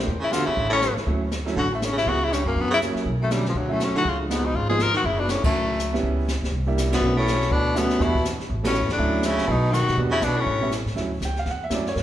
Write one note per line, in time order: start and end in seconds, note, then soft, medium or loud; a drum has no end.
0.07 0.44 E2 medium
0.07 brush sweep soft
0.07 kick soft
0.20 0.34 C#3 medium
0.20 0.34 E4 medium
0.31 0.48 D3 medium
0.31 0.45 G3 medium
0.31 0.46 B3 medium
0.31 0.46 D4 medium
0.31 0.48 F4 medium
0.31 0.46 F#4 medium
0.31 snare medium
0.31 hi-hat pedal medium
0.46 0.69 C#3 medium
0.46 0.72 E4 medium
0.46 muted upright bass stroke soft
0.57 0.94 A1 medium
0.57 brush sweep soft
0.57 kick soft
0.70 0.94 A2 medium
0.70 0.96 C#4 medium
0.82 snare medium
0.82 hi-hat pedal soft
0.96 muted upright bass stroke soft
0.96 snare soft
1.06 1.54 D2 medium
1.06 1.20 F#3 medium
1.06 1.20 A3 medium
1.06 1.21 C#4 medium
1.06 1.21 E4 medium
1.06 brush sweep medium
1.06 kick soft
1.31 snare medium
1.31 hi-hat pedal medium
1.46 1.55 F#3 medium
1.46 1.55 A3 medium
1.46 1.55 C#4 medium
1.46 1.56 E4 medium
1.46 snare soft
1.56 2.04 A1 medium
1.56 1.70 D3 medium
1.56 1.71 F#4 medium
1.56 brush sweep soft
1.56 kick soft
1.71 1.83 F#2 soft
1.71 1.86 A3 medium
1.81 1.92 A2 medium
1.81 1.97 C#4 medium
1.81 snare medium
1.81 hi-hat pedal medium
1.92 2.05 C#3 medium
1.97 2.10 E4 medium
1.97 snare soft
2.05 2.43 C#2 medium
2.05 2.20 C#3 medium
2.05 2.19 G3 medium
2.05 2.19 B3 medium
2.05 2.20 C#4 medium
2.05 2.20 E4 medium
2.05 2.26 F#4 medium
2.05 brush sweep soft
2.05 kick soft
2.20 2.34 C#3 medium
2.20 2.34 E4 medium
2.32 2.45 G2 medium
2.32 2.47 C#4 medium
2.32 snare medium
2.32 hi-hat pedal medium
2.45 2.56 F#2 medium
2.45 2.55 G2 medium
2.45 2.62 A#3 medium
2.56 2.93 F#2 medium
2.56 2.70 F#2 medium
2.56 brush sweep medium
2.56 kick soft
2.60 2.73 B3 medium
2.71 2.80 C#3 medium
2.71 2.79 E4 loud
2.80 3.05 F#3 medium
2.80 3.06 A#3 medium
2.80 3.05 C#4 medium
2.80 3.06 E4 medium
2.80 snare medium
2.80 hi-hat pedal medium
2.95 muted upright bass stroke soft
2.95 snare soft
3.05 3.52 B1 medium
3.05 brush sweep soft
3.05 kick soft
3.21 3.33 F#2 medium
3.21 3.34 A3 medium
3.30 3.46 D2 medium
3.30 3.43 F#3 medium
3.30 3.46 G3 medium
3.30 3.44 A3 medium
3.30 3.44 C#4 medium
3.30 3.44 D4 medium
3.30 snare medium
3.30 hi-hat pedal soft
3.45 3.56 C#2 medium
3.45 3.59 F3 medium
3.45 snare soft
3.55 3.72 D2 medium
3.55 3.92 D2 medium
3.55 3.75 F#3 medium
3.55 brush sweep soft
3.55 kick soft
3.68 3.83 F#2 medium
3.68 4.02 F#3 medium
3.68 4.02 A3 medium
3.68 4.02 C#4 medium
3.68 4.02 E4 medium
3.73 3.85 A3 medium
3.80 3.95 A2 medium
3.80 3.96 C#4 medium
3.80 snare soft
3.80 hi-hat pedal medium
3.95 4.05 D3 medium
3.95 4.10 F#4 medium
3.95 muted upright bass stroke soft
3.95 snare soft
4.03 4.52 C#2 medium
4.03 4.19 C#3 medium
4.03 brush sweep soft
4.03 kick soft
4.08 4.21 F4 medium
4.20 4.32 F2 soft
4.20 4.32 G#3 soft
4.29 4.46 G#2 medium
4.29 4.43 F3 medium
4.29 4.43 G#3 soft
4.29 4.43 B3 medium
4.29 4.47 B3 medium
4.29 4.43 D#4 medium
4.29 snare medium
4.29 hi-hat pedal medium
4.45 4.59 B2 medium
4.45 4.58 D#4 medium
4.54 4.91 G#1 medium
4.54 4.69 C#3 medium
4.54 4.69 F4 medium
4.54 brush sweep soft
4.54 kick soft
4.69 4.78 F3 medium
4.69 4.79 F3 medium
4.69 4.78 G#3 medium
4.69 4.78 B3 medium
4.69 4.79 D#4 medium
4.69 4.84 G#4 medium
4.79 4.93 F3 medium
4.79 4.95 A#4 loud
4.79 snare medium
4.79 hi-hat pedal soft
4.94 5.06 D#3 medium
4.94 5.07 F#4 medium
4.94 muted upright bass stroke soft
4.94 snare soft
5.03 5.40 F#1 medium
5.03 5.22 C#3 medium
5.03 5.21 E4 medium
5.03 brush sweep soft
5.03 kick soft
5.20 5.32 B2 medium
5.20 5.31 D4 medium
5.29 5.44 A2 medium
5.29 5.44 C#4 medium
5.29 snare medium
5.29 hi-hat pedal medium
5.44 6.00 F#2 medium
5.44 5.99 A3 medium
5.44 muted upright bass stroke soft
5.44 kick medium
5.44 ride medium
5.53 6.00 C#2 medium
5.53 brush sweep soft
5.79 snare medium
5.79 hi-hat pedal soft
5.93 6.25 G3 medium
5.93 6.25 B3 medium
5.93 6.26 C#4 medium
5.93 6.26 E4 medium
5.93 snare soft
6.03 6.40 C#2 medium
6.03 brush sweep soft
6.03 kick soft
6.28 snare medium
6.28 hi-hat pedal medium
6.42 6.51 C#2 medium
6.42 snare soft
6.52 6.99 C2 medium
6.52 brush sweep soft
6.52 kick soft
6.67 6.99 G3 medium
6.67 7.00 A#3 medium
6.67 6.99 D4 medium
6.67 7.00 E4 medium
6.78 snare medium
6.78 hi-hat pedal soft
6.92 7.15 F#2 medium
6.92 7.16 B3 medium
6.92 snare medium
6.92 ride medium
7.00 7.48 B1 medium
7.00 7.14 A3 medium
7.00 7.14 C#4 medium
7.00 7.14 D4 medium
7.00 7.15 F#4 medium
7.00 brush sweep medium
7.16 7.53 A2 medium
7.16 7.54 C#4 medium
7.27 snare medium
7.27 hi-hat pedal soft
7.41 snare soft
7.51 7.98 D2 medium
7.51 7.78 B2 medium
7.51 7.80 D4 medium
7.51 brush sweep soft
7.51 kick soft
7.74 8.02 F#2 medium
7.74 8.00 A3 medium
7.74 8.05 B3 medium
7.74 8.00 C#4 medium
7.74 7.99 D4 medium
7.74 7.99 F#4 medium
7.74 snare medium
7.74 hi-hat pedal medium
7.90 snare soft
7.99 8.37 E2 medium
7.99 8.25 B2 medium
7.99 8.13 G3 medium
7.99 8.13 B3 medium
7.99 8.14 D4 medium
7.99 8.26 E4 medium
7.99 8.14 F#4 medium
7.99 brush sweep medium
7.99 kick soft
7.99 snare soft
8.15 kick medium
8.25 snare medium
8.25 hi-hat pedal medium
8.40 muted upright bass stroke soft
8.40 snare soft
8.50 8.80 A1 loud
8.50 brush sweep medium
8.50 kick soft
8.64 8.87 A2 medium
8.64 8.73 G3 medium
8.64 8.73 B3 medium
8.64 8.74 C#4 medium
8.64 8.89 C#4 medium
8.64 8.74 F#4 medium
8.64 snare medium
8.64 ride medium
8.74 hi-hat pedal soft
8.82 8.90 E2 medium
8.89 8.98 C#2 medium
8.89 9.28 A2 medium
8.89 9.28 D4 medium
8.89 snare soft
8.98 9.36 D2 medium
8.98 9.48 F#3 medium
8.98 9.48 A3 medium
8.98 9.49 C#4 medium
8.98 9.49 E4 medium
8.98 brush sweep soft
8.98 kick soft
9.23 9.49 C#3 medium
9.23 9.53 E4 medium
9.23 snare medium
9.23 hi-hat pedal medium
9.37 9.47 C#2 medium
9.37 snare soft
9.48 9.79 B1 medium
9.48 9.74 B2 medium
9.48 9.75 D#4 medium
9.48 brush sweep medium
9.48 kick soft
9.72 9.97 D#3 medium
9.72 9.98 F#4 medium
9.72 snare medium
9.72 hi-hat pedal medium
9.81 9.89 F#2 medium
9.88 9.97 B2 medium
9.88 snare soft
9.97 10.21 E2 medium
9.97 10.11 G3 medium
9.97 10.11 B3 medium
9.97 10.12 D4 medium
9.97 10.12 F#4 medium
9.97 brush sweep soft
9.97 kick soft
10.11 10.25 C#3 medium
10.11 10.26 E4 medium
10.21 10.45 B1 medium
10.21 10.38 B2 medium
10.21 10.41 D4 medium
10.21 snare medium
10.21 hi-hat pedal soft
10.36 10.71 A2 medium
10.36 10.73 C#4 medium
10.46 10.84 A1 medium
10.46 brush sweep medium
10.46 kick soft
10.61 10.70 G3 medium
10.61 10.71 B3 medium
10.61 10.71 C#4 medium
10.61 10.71 E4 medium
10.71 snare medium
10.71 hi-hat pedal soft
10.86 10.95 A2 medium
10.86 snare soft
10.96 11.20 D2 medium
10.96 11.09 F#3 medium
10.96 11.10 A3 soft
10.96 11.10 C#4 medium
10.96 11.10 E4 medium
10.96 brush sweep soft
10.96 kick soft
10.96 snare soft
11.21 11.45 C#2 medium
11.21 kick soft
11.21 snare medium
11.21 hi-hat pedal medium
11.25 11.37 G5 medium
11.36 11.47 F5 medium
11.36 snare soft
11.46 11.70 E2 medium
11.46 brush sweep soft
11.46 kick soft
11.46 snare soft
11.50 11.63 F#5 medium
11.64 11.72 E5 medium
11.70 11.95 F#2 medium
11.70 11.84 F#3 medium
11.70 11.84 A3 medium
11.70 11.84 C#4 medium
11.70 11.84 E4 medium
11.70 kick soft
11.70 snare medium
11.70 hi-hat pedal medium
11.74 11.87 D5 medium
11.86 11.97 C#5 medium
11.86 snare soft
11.95 12.03 G2 medium
11.95 11.96 A#4 soft
11.95 brush sweep medium
11.95 kick soft
11.95 snare soft